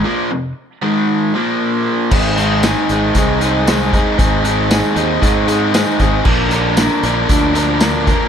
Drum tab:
CC |--------|x-------|--------|x-------|
HH |--------|-xxxxxxx|xxxxxxxx|-xxxxxxx|
TB |--------|--x---x-|--x---x-|--x---x-|
SD |--------|--o---o-|--o---oo|--o---oo|
BD |--------|o---o--o|o---o--o|o---o--o|